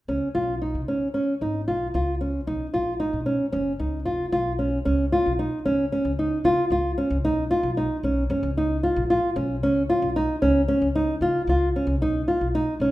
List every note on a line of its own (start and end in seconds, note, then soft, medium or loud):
0.08 0.19 C#2 medium
0.08 0.28 C#4 medium
0.35 0.76 B1 medium
0.35 0.54 F4 soft
0.62 0.81 D#4 medium
0.75 0.97 C#3 medium
0.88 1.07 C#4 medium
1.14 1.33 C#4 medium
1.41 1.63 G#1 medium
1.41 1.61 D#4 medium
1.68 1.90 B1 medium
1.68 1.87 F4 medium
1.94 2.38 C#2 medium
1.94 2.14 F4 medium
2.21 2.40 C#4 medium
2.47 2.58 B1 medium
2.47 2.66 D#4 medium
2.74 3.15 A#1 medium
2.74 2.93 F4 medium
3.00 3.19 D#4 medium
3.13 3.35 B2 medium
3.26 3.45 C#4 medium
3.52 3.75 F#1 medium
3.52 3.72 C#4 medium
3.79 4.02 C#2 medium
3.79 3.99 D#4 medium
4.05 4.28 F1 medium
4.05 4.25 F4 medium
4.32 4.76 B1 medium
4.32 4.52 F4 medium
4.59 4.78 C#4 medium
4.85 5.08 C#2 medium
4.85 5.04 C#4 medium
5.12 5.31 F4 medium
5.26 5.48 B1 medium
5.39 5.58 D#4 medium
5.65 5.87 C#2 medium
5.65 5.84 C#4 medium
5.92 6.11 C#4 medium
6.05 6.27 C#2 medium
6.19 6.38 D#4 medium
6.44 6.55 C#3 medium
6.44 6.64 F4 medium
6.70 6.93 C#2 medium
6.70 6.91 F4 medium
6.98 7.17 C#4 medium
7.10 7.24 C#2 medium
7.24 7.46 B1 medium
7.24 7.43 D#4 medium
7.51 7.70 F4 medium
7.63 7.85 B1 medium
7.77 7.96 D#4 medium
8.03 8.25 B1 medium
8.03 8.23 C#4 medium
8.30 8.41 F#1 medium
8.30 8.49 C#4 medium
8.43 8.87 C#2 medium
8.57 8.76 D#4 medium
8.83 9.02 F4 medium
8.96 9.18 A#1 medium
9.10 9.29 F4 medium
9.36 9.62 B1 medium
9.36 9.55 C#4 medium
9.62 9.84 C#2 medium
9.62 9.82 C#4 medium
9.90 10.08 F4 medium
10.02 10.24 B1 medium
10.16 10.35 D#4 medium
10.42 10.64 C#2 medium
10.42 10.61 C#4 medium
10.68 10.88 C#4 medium
10.82 11.04 C#2 medium
10.95 11.14 D#4 medium
11.21 11.32 C#3 medium
11.21 11.41 F4 medium
11.47 11.70 C#2 medium
11.47 11.68 F4 medium
11.76 11.95 C#4 medium
11.87 12.00 C#2 medium
12.00 12.23 B1 medium
12.00 12.21 D#4 medium
12.28 12.47 F4 medium
12.41 12.63 B1 medium
12.55 12.74 D#4 medium
12.80 12.91 B1 medium
12.80 12.91 C#4 medium